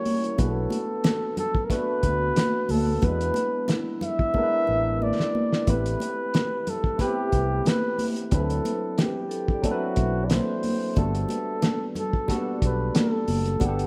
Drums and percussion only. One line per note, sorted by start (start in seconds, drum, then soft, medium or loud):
0.05 open hi-hat medium
0.05 high conga medium
0.24 closed hi-hat soft
0.38 kick loud
0.38 closed hi-hat medium
0.38 muted conga soft
0.70 closed hi-hat medium
0.70 muted conga medium
1.04 snare loud
1.04 closed hi-hat medium
1.04 high conga medium
1.37 closed hi-hat medium
1.37 low conga medium
1.55 kick loud
1.70 kick medium
1.70 snare soft
1.70 closed hi-hat medium
1.70 muted conga soft
2.03 kick medium
2.03 closed hi-hat medium
2.03 muted conga soft
2.36 snare loud
2.36 closed hi-hat medium
2.36 high conga medium
2.69 open hi-hat medium
2.69 high conga medium
3.02 kick loud
3.02 closed hi-hat medium
3.02 muted conga soft
3.21 closed hi-hat medium
3.34 closed hi-hat medium
3.34 muted conga medium
3.68 snare medium
3.68 closed hi-hat medium
3.68 high conga medium
4.01 closed hi-hat medium
4.01 low conga medium
4.19 kick loud
4.34 kick medium
4.34 muted conga soft
4.67 muted conga soft
5.02 high conga medium
5.19 snare medium
5.19 high conga soft
5.35 high conga medium
5.52 snare medium
5.67 kick loud
5.67 closed hi-hat medium
5.67 muted conga soft
5.86 closed hi-hat medium
6.00 closed hi-hat medium
6.00 muted conga soft
6.34 snare loud
6.34 closed hi-hat medium
6.34 high conga medium
6.67 closed hi-hat medium
6.67 low conga medium
6.84 kick loud
6.99 kick medium
6.99 snare soft
6.99 closed hi-hat medium
6.99 muted conga soft
7.32 kick medium
7.32 closed hi-hat medium
7.32 muted conga soft
7.65 snare medium
7.65 closed hi-hat medium
7.65 high conga medium
7.99 open hi-hat medium
7.99 high conga medium
8.16 closed hi-hat soft
8.31 kick loud
8.31 closed hi-hat medium
8.31 muted conga soft
8.50 closed hi-hat medium
8.65 closed hi-hat medium
8.65 muted conga soft
8.98 snare loud
8.98 closed hi-hat medium
8.98 high conga medium
9.31 closed hi-hat medium
9.48 kick loud
9.63 kick medium
9.63 closed hi-hat medium
9.63 muted conga medium
9.96 kick medium
9.96 closed hi-hat medium
9.96 muted conga soft
10.30 snare medium
10.30 closed hi-hat loud
10.30 high conga medium
10.63 open hi-hat medium
10.63 high conga medium
10.96 kick loud
10.96 closed hi-hat medium
10.96 muted conga soft
11.15 closed hi-hat medium
11.29 closed hi-hat medium
11.29 muted conga soft
11.62 snare medium
11.62 closed hi-hat medium
11.62 high conga medium
11.95 closed hi-hat medium
11.95 low conga medium
12.13 kick medium
12.28 kick medium
12.28 snare soft
12.28 closed hi-hat medium
12.28 muted conga soft
12.62 kick loud
12.62 closed hi-hat medium
12.95 snare loud
12.95 closed hi-hat medium
12.95 high conga medium
13.28 open hi-hat medium
13.28 high conga medium
13.46 closed hi-hat soft
13.60 kick loud
13.60 closed hi-hat medium
13.60 muted conga soft
13.79 closed hi-hat medium